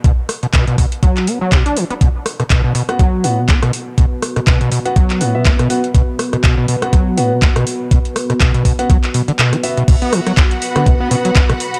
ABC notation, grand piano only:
X:1
M:4/4
L:1/16
Q:"Swing 16ths" 1/4=122
K:Clyd
V:1 name="Grand piano"
z16 | z6 z [B,Ff] z2 [B,Ff] z4 z | z6 z [B,Ff] z2 [B,Ff] [B,Fe] z2 [B,Ff] z | z6 z [B,Ff] z2 [B,Ff] z4 z |
z6 z [B,Ff] z6 [B,Fe] z | z6 z [B,Ff] z2 [B,Ff] z4 z |]